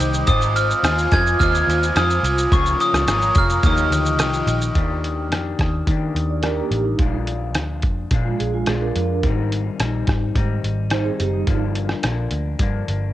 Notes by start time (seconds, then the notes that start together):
Already playing: D#3 G3 A#3 D#4 G4 C5 G5 D6
0.00 C2, ride, shaker
0.14 shaker
0.27 G#1 G#3 C4 F4 C5 D#5 G#5 D#6, kick, ride, shaker
0.41 shaker
0.56 F6, ride, shaker
0.70 shaker
0.83 D#2 C4 F4 C5 D#5, cross-stick, ride, shaker
0.98 shaker
1.12 F2 F4 C5 D#5 G#6, kick, cross-stick, ride, shaker
1.26 shaker
1.39 D#2 G#3 C4 F4 C5 F6, kick, ride, shaker
1.44 D#5
1.54 shaker
1.67 D#2, ride, shaker
1.83 shaker
1.96 F2 D#6, cross-stick, ride, shaker
2.10 shaker
2.23 C2, ride, shaker
2.38 shaker
2.52 C#2 C#3 F3 A#3 F4 G#4 C#6, kick, ride, shaker
2.66 shaker
2.80 D#6, ride, shaker
2.94 C#2, cross-stick, shaker
3.07 G#1 F3 A#3 F4 G#4, cross-stick, ride, shaker
3.21 shaker
3.35 F1 F4 G#4 F6, kick, ride, shaker
3.39 A#3
3.49 shaker
3.63 D#2 D#3 F3 A#3 D#4 G4 D#6, kick, ride, shaker
3.77 shaker
3.90 D2, ride, shaker
4.05 shaker
4.18 C2, cross-stick, ride, shaker
4.33 shaker
4.47 A#1, ride, shaker
4.61 shaker
4.75 D#2 D#3 A#3 D4 G4, kick, closed hi-hat
5.04 closed hi-hat
5.30 F2 D#3 A#3 D4, cross-stick, closed hi-hat
5.34 G4
5.59 D#2, kick, cross-stick, closed hi-hat
5.87 D#3 A#3 D4 G4, kick, closed hi-hat
6.15 D#2, closed hi-hat
6.30 D5
6.42 D#3 A#3 D4 G4 A#4, cross-stick, closed hi-hat
6.56 A#3 G4
6.71 A1, closed hi-hat
6.85 G3 D#4
6.98 A#1 A#2 F3 G#3 D4 F4, kick, closed hi-hat
7.27 closed hi-hat
7.55 D2, cross-stick, closed hi-hat
7.82 F2, kick, closed hi-hat
8.11 A#2 F3 G#3 D4 F4, kick, closed hi-hat
8.25 G#3 F4
8.39 A#1 G#4, closed hi-hat
8.54 G#3 F4
8.66 A#1 F3 G#3 D4 F4 G#4, cross-stick, closed hi-hat
8.81 D4 A#4
8.95 F2, closed hi-hat
9.23 G#1 G#2 D#3 G3 C4 D#4, kick, closed hi-hat
9.52 closed hi-hat
9.80 A#1 D#3 G3 C4 D#4, cross-stick, closed hi-hat
10.07 G#1, kick, cross-stick, closed hi-hat
10.35 G#2 D#3 G3 C4 D#4, kick, closed hi-hat
10.64 G#1, closed hi-hat
10.90 D#3 G3 C4 D#4 C5, cross-stick, closed hi-hat
11.05 C4 G#4
11.19 F#1 G4, closed hi-hat
11.33 G3 D#4
11.47 G1 G2 D3 F3 A#3 D4, kick, closed hi-hat
11.75 closed hi-hat
11.89 cross-stick
12.03 A#1 D3 F3 A#3 D4, cross-stick, closed hi-hat
12.31 D2, closed hi-hat
12.59 G2 D3 F3 A#3 D4, kick, closed hi-hat
12.88 G1, closed hi-hat